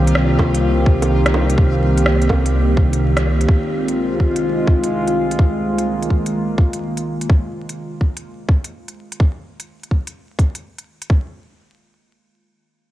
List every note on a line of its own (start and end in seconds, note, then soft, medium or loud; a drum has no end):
0.00 3.47 C2 medium
0.00 7.25 D#3 medium
0.00 3.45 A#3 medium
0.00 5.35 C4 medium
0.00 3.50 F4 medium
0.00 3.44 G4 medium
0.00 3.50 F5 medium
0.07 closed hi-hat medium
0.15 cross-stick loud
0.39 kick medium
0.39 low bongo medium
0.54 closed hi-hat medium
0.86 kick loud
1.02 closed hi-hat medium
1.02 low bongo soft
1.26 cross-stick loud
1.26 closed hi-hat soft
1.34 low bongo medium
1.50 closed hi-hat medium
1.58 kick loud
1.97 closed hi-hat medium
2.06 cross-stick loud
2.22 closed hi-hat soft
2.29 kick medium
2.29 low bongo medium
2.46 closed hi-hat soft
2.77 kick loud
2.93 closed hi-hat medium
3.17 cross-stick loud
3.17 closed hi-hat soft
3.17 low bongo soft
3.41 closed hi-hat soft
3.48 7.26 C2 medium
3.48 7.26 G#3 medium
3.48 7.26 F4 medium
3.48 kick loud
3.88 closed hi-hat soft
4.20 kick medium
4.36 closed hi-hat soft
4.67 kick loud
4.84 closed hi-hat medium
5.08 closed hi-hat soft
5.31 closed hi-hat medium
5.39 7.28 A#3 medium
5.39 kick loud
5.78 closed hi-hat soft
6.02 closed hi-hat soft
6.10 kick medium
6.26 closed hi-hat soft
6.58 kick medium
6.73 closed hi-hat soft
6.97 closed hi-hat soft
7.21 closed hi-hat soft
7.30 kick loud
7.69 closed hi-hat soft
8.01 kick medium
8.17 closed hi-hat soft
8.49 kick medium
8.64 closed hi-hat soft
8.88 closed hi-hat soft
9.12 closed hi-hat soft
9.20 kick loud
9.60 closed hi-hat medium
9.83 closed hi-hat soft
9.91 kick medium
10.07 closed hi-hat medium
10.39 kick medium
10.39 closed hi-hat soft
10.55 closed hi-hat medium
10.78 closed hi-hat soft
11.02 closed hi-hat soft
11.10 kick medium